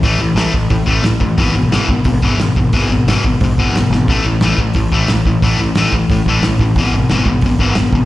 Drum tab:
HH |o-o-o-o-|o-o-o-o-|o-o-o-o-|o-o-o-o-|
SD |--o---o-|--o---o-|--o---oo|--o---o-|
BD |o--ooo-o|o--ooo-o|o--ooo--|o--ooo-o|

HH |o-o-o-o-|o-o-o-o-|
SD |--o---o-|--o---o-|
BD |o--ooo-o|o--ooo-o|